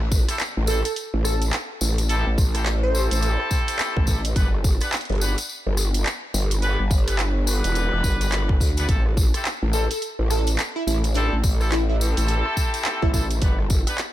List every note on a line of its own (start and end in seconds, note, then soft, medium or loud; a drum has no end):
0.00 0.26 A1 loud
0.00 cross-stick soft
0.12 kick loud
0.12 tambourine medium
0.29 0.37 C4 medium
0.29 0.37 E4 medium
0.29 0.37 G4 medium
0.29 0.37 A4 medium
0.29 cross-stick medium
0.29 closed hi-hat medium
0.29 tambourine medium
0.39 clap loud
0.39 closed hi-hat medium
0.39 tambourine soft
0.57 0.83 A1 loud
0.67 0.81 C4 medium
0.67 0.80 E4 medium
0.67 0.81 G4 medium
0.67 0.79 A4 medium
0.67 0.80 A4 medium
0.67 tambourine medium
0.85 0.92 A4 medium
0.85 closed hi-hat medium
0.85 tambourine soft
0.96 closed hi-hat medium
0.96 tambourine soft
1.14 1.51 A1 loud
1.24 1.43 A4 loud
1.24 cross-stick medium
1.24 tambourine loud
1.42 closed hi-hat medium
1.42 tambourine soft
1.53 clap loud
1.53 closed hi-hat medium
1.53 tambourine soft
1.81 2.24 A1 loud
1.81 tambourine loud
1.98 closed hi-hat medium
1.98 tambourine medium
2.09 2.28 C4 medium
2.09 2.28 E4 medium
2.09 2.28 G4 medium
2.09 2.28 A4 loud
2.09 closed hi-hat medium
2.09 tambourine soft
2.27 3.09 A1 medium
2.38 kick loud
2.38 tambourine medium
2.55 2.63 C4 medium
2.55 2.63 E4 medium
2.55 2.63 G4 medium
2.55 2.63 A4 medium
2.55 cross-stick medium
2.55 closed hi-hat medium
2.55 tambourine soft
2.66 clap loud
2.66 closed hi-hat medium
2.66 tambourine soft
2.83 2.92 C5 loud
2.94 4.05 C4 loud
2.94 4.05 E4 medium
2.94 4.05 G4 medium
2.94 4.05 A4 loud
2.94 3.06 C5 medium
2.94 tambourine medium
3.11 3.37 A1 loud
3.11 3.19 C5 medium
3.11 closed hi-hat medium
3.11 tambourine medium
3.22 closed hi-hat medium
3.22 tambourine soft
3.40 cross-stick medium
3.51 kick medium
3.51 tambourine medium
3.68 closed hi-hat medium
3.68 tambourine soft
3.79 clap loud
3.79 closed hi-hat medium
3.79 tambourine soft
3.97 4.34 A1 medium
3.97 kick loud
4.07 4.20 C4 medium
4.07 4.20 E4 medium
4.07 4.20 G4 medium
4.07 4.20 A4 medium
4.07 kick medium
4.07 tambourine medium
4.25 closed hi-hat medium
4.25 tambourine medium
4.36 4.79 G1 loud
4.36 4.48 B3 medium
4.36 4.48 D4 medium
4.36 4.48 G4 medium
4.36 4.48 B4 medium
4.36 kick loud
4.36 closed hi-hat medium
4.36 tambourine soft
4.64 kick loud
4.64 tambourine loud
4.81 4.89 B3 medium
4.81 4.89 D4 medium
4.81 4.90 G4 medium
4.81 4.89 B4 medium
4.81 cross-stick medium
4.81 closed hi-hat medium
4.81 tambourine soft
4.92 clap loud
4.92 closed hi-hat medium
4.92 tambourine soft
4.97 closed hi-hat soft
5.01 closed hi-hat soft
5.05 closed hi-hat soft
5.09 5.35 G1 loud
5.09 closed hi-hat soft
5.12 closed hi-hat soft
5.15 closed hi-hat soft
5.18 5.33 B3 medium
5.18 5.33 D4 medium
5.18 5.33 G4 medium
5.18 5.33 B4 medium
5.18 closed hi-hat soft
5.18 tambourine loud
5.38 closed hi-hat medium
5.38 tambourine medium
5.49 tambourine soft
5.67 6.04 G1 loud
5.77 cross-stick medium
5.77 tambourine medium
5.94 closed hi-hat medium
5.94 tambourine medium
6.06 clap loud
6.06 closed hi-hat medium
6.06 tambourine soft
6.34 6.77 G1 loud
6.34 tambourine loud
6.51 closed hi-hat medium
6.51 tambourine medium
6.62 6.81 B3 medium
6.62 6.81 D4 medium
6.62 6.81 G4 medium
6.62 6.81 B4 loud
6.62 closed hi-hat medium
6.62 tambourine soft
6.79 7.62 G1 medium
6.79 cross-stick soft
6.91 kick loud
6.91 tambourine medium
7.07 7.16 B3 medium
7.07 7.16 D4 medium
7.07 7.16 G4 medium
7.07 7.16 B4 medium
7.07 cross-stick medium
7.07 closed hi-hat medium
7.07 tambourine medium
7.19 clap loud
7.19 closed hi-hat soft
7.19 tambourine soft
7.47 8.58 B3 medium
7.47 8.58 D4 medium
7.47 8.58 G4 medium
7.47 8.58 B4 loud
7.47 tambourine loud
7.64 7.90 E1 loud
7.64 closed hi-hat medium
7.64 tambourine medium
7.75 closed hi-hat soft
7.75 tambourine soft
7.93 8.02 E1 loud
7.93 cross-stick medium
8.04 8.59 G1 loud
8.04 kick medium
8.04 tambourine loud
8.21 closed hi-hat medium
8.21 tambourine medium
8.32 clap loud
8.32 closed hi-hat medium
8.32 tambourine soft
8.49 kick loud
8.60 8.87 D2 loud
8.60 kick medium
8.60 tambourine medium
8.77 8.86 B3 medium
8.77 8.86 D4 medium
8.77 8.86 G4 medium
8.77 8.86 B4 loud
8.77 closed hi-hat medium
8.77 tambourine medium
8.89 9.32 A1 medium
8.89 9.01 C4 medium
8.89 9.01 E4 medium
8.89 9.01 G4 medium
8.89 9.01 A4 medium
8.89 kick loud
8.89 closed hi-hat medium
8.89 tambourine soft
9.06 cross-stick soft
9.17 kick loud
9.17 tambourine loud
9.34 9.42 C4 medium
9.34 9.42 E4 medium
9.34 9.42 G4 medium
9.34 9.42 A4 medium
9.34 cross-stick medium
9.34 closed hi-hat medium
9.34 tambourine soft
9.45 clap loud
9.45 closed hi-hat medium
9.45 tambourine soft
9.63 9.88 A1 loud
9.73 9.86 C4 medium
9.73 9.86 E4 medium
9.73 9.86 G4 medium
9.73 9.85 A4 medium
9.73 9.86 A4 medium
9.73 tambourine loud
9.91 9.98 A4 medium
9.91 closed hi-hat medium
9.91 tambourine medium
10.02 closed hi-hat medium
10.02 tambourine soft
10.19 10.57 A1 loud
10.30 10.48 A4 loud
10.30 cross-stick medium
10.30 tambourine medium
10.47 closed hi-hat medium
10.47 tambourine medium
10.59 clap loud
10.59 closed hi-hat medium
10.59 tambourine soft
10.76 10.83 E4 medium
10.87 11.30 A1 loud
10.87 10.98 E4 medium
10.87 tambourine medium
11.04 closed hi-hat medium
11.04 tambourine soft
11.14 11.34 C4 loud
11.14 11.33 D4 medium
11.14 11.34 E4 medium
11.14 11.34 G4 medium
11.14 11.34 A4 loud
11.14 closed hi-hat medium
11.14 tambourine soft
11.33 12.15 A1 medium
11.44 kick loud
11.44 tambourine loud
11.61 11.69 C4 medium
11.61 11.69 E4 medium
11.61 11.69 G4 medium
11.61 11.69 A4 medium
11.61 cross-stick medium
11.61 tambourine soft
11.72 11.83 E4 medium
11.72 clap loud
11.72 closed hi-hat soft
11.72 tambourine soft
11.89 11.96 E4 medium
12.00 13.11 C4 loud
12.00 13.11 E4 medium
12.00 13.11 G4 medium
12.00 13.11 A4 loud
12.00 tambourine medium
12.17 12.43 A1 loud
12.17 closed hi-hat medium
12.17 tambourine medium
12.28 closed hi-hat medium
12.28 tambourine soft
12.46 cross-stick medium
12.57 kick medium
12.57 tambourine loud
12.74 closed hi-hat medium
12.74 tambourine soft
12.85 clap loud
12.85 closed hi-hat medium
12.85 tambourine soft
13.02 13.40 A1 medium
13.02 13.10 E4 medium
13.02 kick loud
13.13 13.26 C4 medium
13.13 13.26 E4 medium
13.13 13.25 E4 medium
13.13 13.26 G4 medium
13.13 13.26 A4 medium
13.13 kick medium
13.13 tambourine loud
13.31 closed hi-hat medium
13.31 tambourine soft
13.42 13.85 G1 medium
13.42 13.54 B3 medium
13.42 13.54 D4 medium
13.42 13.54 G4 medium
13.42 13.54 B4 medium
13.42 kick loud
13.42 closed hi-hat medium
13.42 tambourine soft
13.59 cross-stick soft
13.70 kick loud
13.70 tambourine medium
13.87 13.95 B3 medium
13.87 13.95 D4 medium
13.87 13.95 G4 medium
13.87 13.95 B4 loud
13.87 cross-stick medium
13.87 closed hi-hat medium
13.87 tambourine soft
13.98 clap loud
13.98 closed hi-hat medium
13.98 tambourine soft